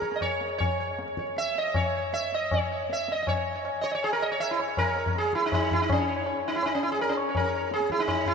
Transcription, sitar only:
Already playing: A#4
0.01 C#5
0.16 D#5
0.22 C#5
0.58 C#5
0.80 C#5
1.19 C#5
1.38 E5
1.58 D#5
1.76 C#5
1.96 C#5
2.14 E5
2.34 D#5
2.54 C#5
2.72 C#5
2.93 E5
3.12 D#5
3.23 D#5
3.28 C#5
3.37 C#5
3.55 C#5
3.65 C#5
3.81 C#5 D#5
3.92 C#5 D#5
4.04 G#4
4.13 A#4
4.22 D#5
4.32 C#5
4.40 E5
4.51 E4
4.60 C#5
4.68 C#5
4.78 A#4
4.88 C#5
4.98 C#5
5.18 G#4
5.25 C#5
5.35 E4
5.46 D#4
5.54 D#4
5.62 C#5
5.73 E4
5.82 D#4
5.92 C#4
5.98 C#5
6.07 C#5
6.16 C#5
6.26 C#5
6.48 D#4
6.56 E4
6.66 D#4
6.75 C#4
6.83 E4
6.92 G#4
7.01 A#4
7.09 C#4
7.19 C#5
7.29 C#5
7.37 A#4
7.45 C#5
7.55 C#5
7.74 G#4
7.92 E4
8.00 D#4
8.08 D#4
8.19 C#5
8.28 E4

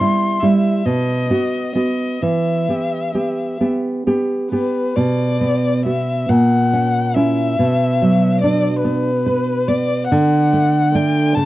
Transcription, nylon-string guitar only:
0.00 G3 E4
0.42 G3 E4
0.86 B2
1.30 B3 F#4
1.75 B3 F#4
2.22 E3
2.69 B3 G4
3.15 B3 G4
3.61 B3 G4
4.07 B3 G4
4.52 B3 G4
4.97 B2
5.41 B3
5.85 B3 F#4
6.29 A#2
6.73 C#4
7.16 C#4 E4
7.59 B2
8.02 F#3
8.44 D4
8.84 B3
9.26 B4
9.68 B3
10.12 D3
10.53 A3
10.95 A3 D4
11.37 C#3

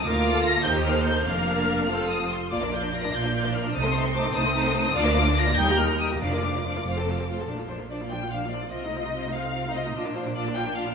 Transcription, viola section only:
0.02 A#3 F4
0.63 A#3 D#4
1.25 A#3 D4
1.88 C4 F4
2.51 A#3 F4
2.61 D4
2.72 A#3 F4
2.83 D4
2.94 A#3 F4
3.04 D4
3.14 A#3 F4
3.24 D4
3.34 A#3 F4
3.45 D4
3.55 A#3 F4
3.65 D4
3.75 A3 D#4
3.85 C4
3.94 A3 D#4
4.05 C4
4.15 A3 D#4
4.25 C4
4.35 A3 D#4
4.44 C4
4.54 A3 D#4
4.64 C4
4.75 A3 D#4
4.85 C4
4.95 D4 F4
5.05 A#3 D4
5.16 D4 F4
5.26 A#3 D4
5.37 D4 F4
5.47 A#3 D4
5.58 G3 D#4
5.68 A#3 G4
5.78 G3 D#4
5.89 A#3 G4
6.00 G3 D#4
6.11 A#3 G4
6.20 F3 D4
6.32 A#3 F4
6.44 F3 D4
6.55 A#3 F4
6.66 F3 D4
6.76 A#3 F4
6.86 A3 F4
6.96 C4 A4
7.07 A3 F4
7.17 C4 A4
7.28 A3 F4
7.38 C4 A4
7.48 F3 D4
7.58 A#3 F4
7.68 F3 D4
7.78 A#3 F4
7.90 F3 D4
8.00 A#3 F4
8.10 F3 D4
8.21 A#3 F4
8.31 F3 D4
8.41 A#3 F4
8.52 F3 D4
8.61 A#3 F4
8.72 C4 F4
8.82 A3 D#4
8.93 C4 F4
9.03 A3 D#4
9.13 C4 F4
9.24 A3 D#4
9.34 C4 F4
9.44 A3 D#4
9.54 C4 F4
9.64 A3 D#4
9.74 C4 F4
9.85 A3 D#4
9.95 D4 F4
10.05 A#3 D4
10.15 D4 F4
10.25 A#3 D4
10.35 D4 F4
10.45 A#3 D4
10.55 D4 F4
10.65 A#3 D4
10.74 D4 F4
10.86 A#3 D4

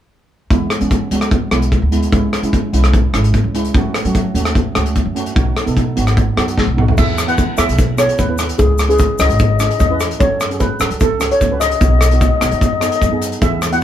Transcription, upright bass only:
0.50 E2
0.81 E3
1.11 C#2
1.51 B1
1.82 D2
2.12 C#2
2.42 C#3
2.73 B1
3.13 G#1
3.44 C#2
3.74 F#2
4.05 F#3
4.34 D#2
4.75 C#2
5.05 F#2
5.36 B1
5.67 B2
5.97 G#1
6.37 F#2
6.67 B1
6.98 E2
7.58 E2
7.68 B1
8.19 D#2
8.59 C#2
9.19 C#2
9.29 G#1
9.80 E2
10.20 F#2
10.80 F#2
10.90 C#2
11.41 C#2
11.81 B1
12.41 B1
12.52 F#2
13.01 F#2
13.42 E2

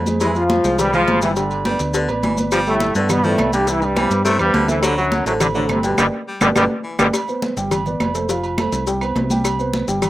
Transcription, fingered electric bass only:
Already playing: F2
0.64 C2
1.07 G1
1.80 D2
2.08 A1
2.23 G1
2.95 G2
3.38 C2
4.10 G2
4.39 E2
4.54 D2
5.25 A1
5.69 G1
5.98 G1
6.41 G1
6.55 G1
6.99 G1
7.57 G1
8.00 F1
8.72 C2
9.15 C2
9.88 G1

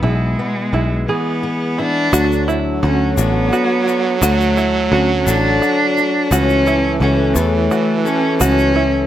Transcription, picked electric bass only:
0.03 B1
0.73 B1
2.13 D2
2.83 D2
3.18 A1
4.22 D2
4.92 D2
5.27 A1
6.31 C#2
7.00 C#2
7.36 E2
8.41 C#2

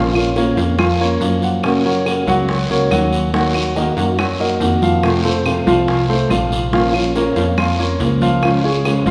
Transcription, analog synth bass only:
Already playing: A#1
0.57 F2
1.21 F#2
2.27 C#2
2.69 C#2
2.91 D#2
3.97 F#2
4.60 F2
5.67 C2
6.30 A#1
7.36 F2
8.00 C#2
9.06 G#1

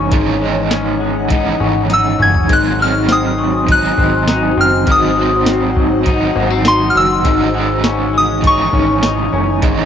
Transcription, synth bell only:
1.94 E6
2.22 G#6
2.53 F#6
2.82 F6
3.12 D#6
3.72 F#6
4.61 F6
4.91 D#6
6.68 C6
6.90 F6
6.97 E6
8.18 D#6
8.47 C#6

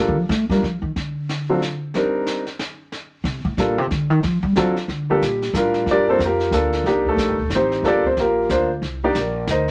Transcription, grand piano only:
Already playing: G3 A#3 D4 F4 A4
0.50 G3 A#3 D4 F4 A#4
1.49 F#3 C4 D4 F4 A4
1.95 G3 C4 D4 D#4 A#4
3.59 G3 A#3 D4 F4 A4
4.57 F#3 C4 D4 F4 A4
5.10 G3 A#3 D4 F4 G4 A4
5.54 G3 D4 F4 A4 A#4
5.58 G4
5.91 D4 G4 A#4 D5
6.08 A#3 C4 D4 F4 A4 C5
6.25 A#3 F4 G4 A#4
6.53 A#3 D4 F4 A4
6.86 A#3 D4 D#4 G4
7.09 A3 A4
7.55 C4 D#4 G4 C5
7.84 A#3 D4 F4 G4 A4 D5
7.88 D4 A#4
8.06 C4 C5
8.20 A#3 F4 G4 A#4
8.50 A#3 D4 F4 C5
9.04 A#3 D4 D#4 G4 A#4 D5
9.50 D#4 A#4 C5 D#5

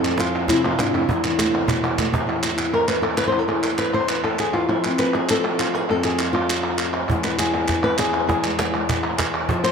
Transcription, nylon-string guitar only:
Already playing: F2 A4
0.04 F3
0.19 F4
0.49 C3 E4
0.65 F4
0.79 G#2 D4
0.93 F2 E4
1.08 E2
1.25 E3
1.39 A3
1.53 B3
1.67 B2
1.83 B3
1.99 A3
2.12 B3
2.27 E2
2.45 E4
2.60 E4
2.74 A#4
2.88 B4
3.02 A4
3.18 B4
3.27 C5
3.34 E4
3.39 A4
3.48 E2 G#4
3.65 A4
3.78 B4
3.94 C5
4.09 B4
4.24 A4
4.40 G#4
4.53 E2 F4
4.69 F3 E4
4.86 C4
4.99 B4
5.15 G#4
5.31 A4
5.45 C4
5.59 F4
5.75 G#4
5.90 F2 A4
6.04 G#4
6.20 F4
6.33 F4
7.09 E2 G#3 B3 E4 G#4
7.24 B4
7.39 G#4
7.54 B3 E4
7.84 B4
7.99 G#4
8.14 E4
8.28 E2 G#4
8.45 G#3
8.61 B3
8.75 G#3 B3 G#4
9.50 F3
9.64 C5

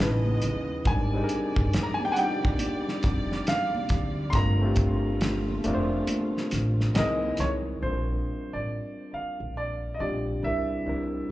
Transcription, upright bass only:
0.00 A1
0.43 D#2
0.86 G#1
1.57 G1
3.04 F1
3.90 D2
4.34 G1
5.65 F1
6.53 A1
6.96 C2
7.39 C2
7.82 A#1
8.54 A1
9.13 muted upright bass stroke
9.40 A#1
10.00 A#1
10.43 C2
10.86 C2

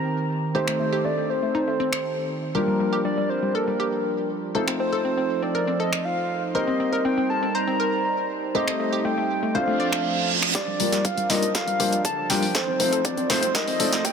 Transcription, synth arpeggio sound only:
Already playing: A#4
0.55 G4
0.68 A3
0.80 A3
0.93 G4
1.05 A3
1.18 A3
1.43 A3
1.55 D#4
1.68 A3
1.80 C4
2.55 G4
2.68 G3
2.80 G3
2.93 G4
3.05 G3
3.18 G3
3.43 G3
3.55 A4
3.68 G3
3.80 G4
4.55 A4
4.68 C4
4.80 C4
4.93 A4
5.05 C4
5.18 C4
5.43 C4
5.55 A#4
5.68 C4
5.80 A4
6.55 A#4
6.68 C4
6.80 C4
6.93 A#4
7.05 C4
7.18 C4
7.43 C4
7.55 C5
7.68 C4
7.80 A#4
8.55 G4
8.68 A3
8.80 A3
8.93 G4
9.05 A3
9.18 A3
9.43 A3
9.55 C5
9.68 A3
9.80 D5
10.55 G4
10.68 G3
10.80 G3
10.93 G4
11.05 G3
11.18 G3
11.43 G3
11.55 A4
11.67 G3
11.80 G4
12.55 A4
12.68 C4
12.80 C4
12.93 A4
13.05 C4
13.18 C4
13.43 C4
13.55 A#4
13.68 C4
13.80 A4

